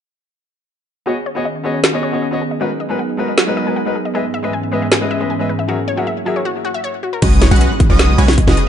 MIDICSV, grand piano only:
0, 0, Header, 1, 2, 480
1, 0, Start_track
1, 0, Tempo, 384615
1, 1334, Time_signature, 4, 2, 24, 8
1, 10840, End_track
2, 0, Start_track
2, 0, Title_t, "Grand piano"
2, 0, Program_c, 0, 0
2, 1321, Note_on_c, 0, 59, 73
2, 1327, Note_on_c, 0, 66, 65
2, 1334, Note_on_c, 0, 68, 68
2, 1340, Note_on_c, 0, 73, 67
2, 1346, Note_on_c, 0, 75, 78
2, 1424, Note_off_c, 0, 59, 0
2, 1427, Note_off_c, 0, 66, 0
2, 1431, Note_off_c, 0, 68, 0
2, 1433, Note_off_c, 0, 73, 0
2, 1437, Note_off_c, 0, 75, 0
2, 1684, Note_on_c, 0, 59, 75
2, 1690, Note_on_c, 0, 66, 68
2, 1696, Note_on_c, 0, 68, 68
2, 1701, Note_on_c, 0, 73, 68
2, 1708, Note_on_c, 0, 75, 82
2, 1783, Note_off_c, 0, 59, 0
2, 1786, Note_off_c, 0, 66, 0
2, 1789, Note_off_c, 0, 68, 0
2, 1792, Note_off_c, 0, 73, 0
2, 1795, Note_off_c, 0, 75, 0
2, 2040, Note_on_c, 0, 59, 76
2, 2048, Note_on_c, 0, 66, 69
2, 2053, Note_on_c, 0, 68, 68
2, 2058, Note_on_c, 0, 73, 71
2, 2066, Note_on_c, 0, 75, 81
2, 2201, Note_off_c, 0, 59, 0
2, 2204, Note_off_c, 0, 66, 0
2, 2207, Note_off_c, 0, 68, 0
2, 2210, Note_off_c, 0, 73, 0
2, 2213, Note_off_c, 0, 75, 0
2, 2403, Note_on_c, 0, 59, 79
2, 2410, Note_on_c, 0, 66, 76
2, 2416, Note_on_c, 0, 68, 76
2, 2423, Note_on_c, 0, 73, 75
2, 2429, Note_on_c, 0, 75, 90
2, 2620, Note_off_c, 0, 59, 0
2, 2624, Note_off_c, 0, 66, 0
2, 2627, Note_off_c, 0, 68, 0
2, 2630, Note_off_c, 0, 73, 0
2, 2633, Note_off_c, 0, 75, 0
2, 2642, Note_on_c, 0, 59, 72
2, 2649, Note_on_c, 0, 66, 65
2, 2654, Note_on_c, 0, 68, 66
2, 2662, Note_on_c, 0, 73, 67
2, 2667, Note_on_c, 0, 75, 78
2, 2799, Note_off_c, 0, 59, 0
2, 2803, Note_off_c, 0, 66, 0
2, 2805, Note_off_c, 0, 68, 0
2, 2810, Note_off_c, 0, 73, 0
2, 2812, Note_off_c, 0, 75, 0
2, 2882, Note_on_c, 0, 59, 72
2, 2889, Note_on_c, 0, 66, 70
2, 2895, Note_on_c, 0, 68, 67
2, 2901, Note_on_c, 0, 73, 67
2, 2908, Note_on_c, 0, 75, 84
2, 2982, Note_off_c, 0, 59, 0
2, 2986, Note_off_c, 0, 66, 0
2, 2989, Note_off_c, 0, 68, 0
2, 2992, Note_off_c, 0, 73, 0
2, 2995, Note_off_c, 0, 75, 0
2, 3241, Note_on_c, 0, 56, 75
2, 3249, Note_on_c, 0, 63, 70
2, 3253, Note_on_c, 0, 66, 67
2, 3260, Note_on_c, 0, 70, 66
2, 3266, Note_on_c, 0, 71, 81
2, 3344, Note_off_c, 0, 56, 0
2, 3348, Note_off_c, 0, 63, 0
2, 3350, Note_off_c, 0, 66, 0
2, 3353, Note_off_c, 0, 70, 0
2, 3357, Note_off_c, 0, 71, 0
2, 3603, Note_on_c, 0, 56, 74
2, 3610, Note_on_c, 0, 63, 68
2, 3616, Note_on_c, 0, 66, 67
2, 3622, Note_on_c, 0, 70, 69
2, 3628, Note_on_c, 0, 71, 83
2, 3703, Note_off_c, 0, 56, 0
2, 3706, Note_off_c, 0, 63, 0
2, 3709, Note_off_c, 0, 66, 0
2, 3712, Note_off_c, 0, 70, 0
2, 3715, Note_off_c, 0, 71, 0
2, 3960, Note_on_c, 0, 56, 74
2, 3967, Note_on_c, 0, 63, 71
2, 3973, Note_on_c, 0, 66, 71
2, 3979, Note_on_c, 0, 70, 72
2, 3985, Note_on_c, 0, 71, 81
2, 4120, Note_off_c, 0, 56, 0
2, 4124, Note_off_c, 0, 63, 0
2, 4127, Note_off_c, 0, 66, 0
2, 4130, Note_off_c, 0, 70, 0
2, 4133, Note_off_c, 0, 71, 0
2, 4323, Note_on_c, 0, 56, 83
2, 4329, Note_on_c, 0, 63, 75
2, 4335, Note_on_c, 0, 66, 76
2, 4342, Note_on_c, 0, 70, 76
2, 4348, Note_on_c, 0, 71, 93
2, 4540, Note_off_c, 0, 56, 0
2, 4543, Note_off_c, 0, 63, 0
2, 4546, Note_off_c, 0, 66, 0
2, 4550, Note_off_c, 0, 70, 0
2, 4552, Note_off_c, 0, 71, 0
2, 4564, Note_on_c, 0, 56, 74
2, 4569, Note_on_c, 0, 63, 67
2, 4576, Note_on_c, 0, 66, 65
2, 4582, Note_on_c, 0, 70, 67
2, 4588, Note_on_c, 0, 71, 76
2, 4720, Note_off_c, 0, 56, 0
2, 4723, Note_off_c, 0, 63, 0
2, 4726, Note_off_c, 0, 66, 0
2, 4729, Note_off_c, 0, 70, 0
2, 4732, Note_off_c, 0, 71, 0
2, 4804, Note_on_c, 0, 56, 76
2, 4811, Note_on_c, 0, 63, 67
2, 4818, Note_on_c, 0, 66, 66
2, 4825, Note_on_c, 0, 70, 67
2, 4831, Note_on_c, 0, 71, 82
2, 4903, Note_off_c, 0, 56, 0
2, 4907, Note_off_c, 0, 63, 0
2, 4910, Note_off_c, 0, 66, 0
2, 4913, Note_off_c, 0, 70, 0
2, 4917, Note_off_c, 0, 71, 0
2, 5162, Note_on_c, 0, 56, 75
2, 5168, Note_on_c, 0, 68, 71
2, 5175, Note_on_c, 0, 71, 69
2, 5181, Note_on_c, 0, 75, 68
2, 5187, Note_on_c, 0, 76, 85
2, 5264, Note_off_c, 0, 56, 0
2, 5268, Note_off_c, 0, 68, 0
2, 5271, Note_off_c, 0, 71, 0
2, 5274, Note_off_c, 0, 75, 0
2, 5277, Note_off_c, 0, 76, 0
2, 5524, Note_on_c, 0, 56, 76
2, 5530, Note_on_c, 0, 68, 70
2, 5536, Note_on_c, 0, 71, 70
2, 5542, Note_on_c, 0, 75, 68
2, 5549, Note_on_c, 0, 76, 85
2, 5623, Note_off_c, 0, 56, 0
2, 5626, Note_off_c, 0, 68, 0
2, 5629, Note_off_c, 0, 71, 0
2, 5632, Note_off_c, 0, 75, 0
2, 5635, Note_off_c, 0, 76, 0
2, 5884, Note_on_c, 0, 56, 80
2, 5890, Note_on_c, 0, 68, 71
2, 5898, Note_on_c, 0, 71, 69
2, 5903, Note_on_c, 0, 75, 70
2, 5910, Note_on_c, 0, 76, 90
2, 6043, Note_off_c, 0, 56, 0
2, 6046, Note_off_c, 0, 68, 0
2, 6049, Note_off_c, 0, 71, 0
2, 6052, Note_off_c, 0, 75, 0
2, 6056, Note_off_c, 0, 76, 0
2, 6247, Note_on_c, 0, 56, 85
2, 6255, Note_on_c, 0, 68, 79
2, 6260, Note_on_c, 0, 71, 81
2, 6267, Note_on_c, 0, 75, 78
2, 6274, Note_on_c, 0, 76, 92
2, 6462, Note_off_c, 0, 56, 0
2, 6466, Note_off_c, 0, 68, 0
2, 6469, Note_off_c, 0, 71, 0
2, 6472, Note_off_c, 0, 75, 0
2, 6476, Note_off_c, 0, 76, 0
2, 6486, Note_on_c, 0, 56, 75
2, 6492, Note_on_c, 0, 68, 66
2, 6498, Note_on_c, 0, 71, 67
2, 6504, Note_on_c, 0, 75, 67
2, 6509, Note_on_c, 0, 76, 80
2, 6641, Note_off_c, 0, 56, 0
2, 6644, Note_off_c, 0, 68, 0
2, 6647, Note_off_c, 0, 71, 0
2, 6650, Note_off_c, 0, 75, 0
2, 6653, Note_off_c, 0, 76, 0
2, 6727, Note_on_c, 0, 56, 75
2, 6732, Note_on_c, 0, 68, 68
2, 6740, Note_on_c, 0, 71, 70
2, 6745, Note_on_c, 0, 75, 67
2, 6751, Note_on_c, 0, 76, 84
2, 6825, Note_off_c, 0, 56, 0
2, 6827, Note_off_c, 0, 68, 0
2, 6831, Note_off_c, 0, 71, 0
2, 6834, Note_off_c, 0, 75, 0
2, 6837, Note_off_c, 0, 76, 0
2, 7082, Note_on_c, 0, 54, 76
2, 7089, Note_on_c, 0, 66, 67
2, 7096, Note_on_c, 0, 68, 71
2, 7101, Note_on_c, 0, 70, 69
2, 7107, Note_on_c, 0, 76, 83
2, 7184, Note_off_c, 0, 54, 0
2, 7188, Note_off_c, 0, 66, 0
2, 7191, Note_off_c, 0, 68, 0
2, 7194, Note_off_c, 0, 70, 0
2, 7197, Note_off_c, 0, 76, 0
2, 7441, Note_on_c, 0, 54, 77
2, 7448, Note_on_c, 0, 66, 70
2, 7453, Note_on_c, 0, 68, 73
2, 7460, Note_on_c, 0, 70, 71
2, 7467, Note_on_c, 0, 76, 85
2, 7542, Note_off_c, 0, 54, 0
2, 7545, Note_off_c, 0, 66, 0
2, 7548, Note_off_c, 0, 68, 0
2, 7551, Note_off_c, 0, 70, 0
2, 7555, Note_off_c, 0, 76, 0
2, 7802, Note_on_c, 0, 54, 81
2, 7808, Note_on_c, 0, 66, 73
2, 7815, Note_on_c, 0, 68, 73
2, 7821, Note_on_c, 0, 70, 72
2, 7827, Note_on_c, 0, 76, 90
2, 7962, Note_off_c, 0, 54, 0
2, 7964, Note_off_c, 0, 66, 0
2, 7968, Note_off_c, 0, 68, 0
2, 7971, Note_off_c, 0, 70, 0
2, 7974, Note_off_c, 0, 76, 0
2, 10840, End_track
0, 0, End_of_file